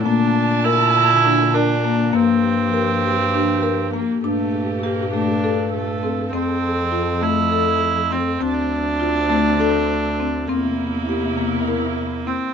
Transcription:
<<
  \new Staff \with { instrumentName = "Marimba" } { \time 7/8 \key g \dorian \tempo 4 = 101 bes4 bes'4 d'8 bes'8 bes8 | bes4 bes'4 d'8 bes'8 bes8 | d'4 g'8 a8 a'4 c'8 | c'4 f'8 a8 a'4 c'8 |
c'4 f'8 a8 a'4 c'8 | c'4 g'8 bes8 bes'4 c'8 | }
  \new Staff \with { instrumentName = "Viola" } { \time 7/8 \key g \dorian d'4 e'4. d'4 | c'2. bes8 | a4 bes8 d'4 a4 | c'4. e'4. c'8 |
d'2.~ d'8 | bes2. c'8 | }
  \new Staff \with { instrumentName = "String section" } { \time 7/8 \key g \dorian << { <d a''>2.~ <d a''>8 | <f g'>2.~ <f g'>8 | <bes, g'>2.~ <bes, g'>8 | f2.~ f8 |
d2.~ d8 | <c e'>2.~ <c e'>8 | } \\ { bes2.~ bes8~ | bes2.~ bes8 | a'2.~ a'8~ | a'2.~ a'8 |
c'2.~ c'8 | bes2.~ bes8 | } >> }
  \new Staff \with { instrumentName = "Bass clarinet" } { \clef bass \time 7/8 \key g \dorian bes,2.~ bes,8 | g,2.~ g,8 | g,2.~ g,8 | f,2.~ f,8 |
d,2.~ d,8 | e,2.~ e,8 | }
>>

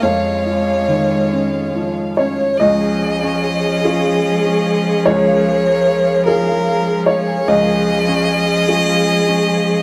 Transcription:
<<
  \new Staff \with { instrumentName = "Violin" } { \time 6/8 \key des \major \tempo 4. = 49 des''2~ des''16 r16 des''8 | ees''2. | des''4. bes'4 des''8 | ees''2. | }
  \new Staff \with { instrumentName = "Harp" } { \time 6/8 \key des \major r2. | des'16 aes'16 aes'16 des'16 aes'16 aes'16 des'16 aes'16 aes'16 des'16 aes'16 des''16 | bes'16 f''16 f''16 bes'16 f''16 f''16 bes'16 f''16 f''16 bes'16 f''16 aes''16 | des'16 aes'16 aes'16 des'16 aes'16 aes'16 des'16 aes'16 aes'16 des'16 aes'16 des''16 | }
  \new Staff \with { instrumentName = "Viola" } { \time 6/8 \key des \major r2. | aes'2.~ | aes'2. | aes'2. | }
  \new Staff \with { instrumentName = "String section" } { \time 6/8 \key des \major << { f''2. | des''2. | bes'2. | aes'2. | } \\ { <aes f'>2. | <aes f'>2.~ | <aes f'>2. | <aes f'>2. | } >> }
  \new Staff \with { instrumentName = "Upright piano" } { \time 6/8 \key des \major << { f''2~ f''8 des''8 | ees''2. | des''4. bes'4 des''8 | ees''2. | } \\ { <f, des'>8 f8 ees8 des'8 f8 des'8 | des,4. <f' aes'>4. | des,4. <f' aes'>4. | des,4. <f' aes'>4. | } >> }
  \new Staff \with { instrumentName = "Cello" } { \clef bass \time 6/8 \key des \major aes2~ aes8. r16 | f2.~ | f2. | f2. | }
>>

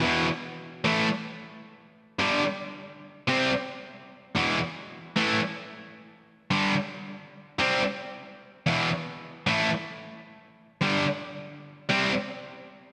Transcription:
\new Staff \with { instrumentName = "Distorted electric guitar" } { \clef bass \time 4/4 \key a \dorian \tempo 4 = 112 <e, b, e>8 r4 <a, e a>8 r2 | <g, d g>8 r4. <c g c'>8 r4. | <e, b, e>8 r4 <a, e a>8 r2 | <g, d g>8 r4. <c g c'>8 r4. |
<e, b, e>8 r4 <a, e a>8 r2 | <g, d g>8 r4. <c g c'>8 r4. | }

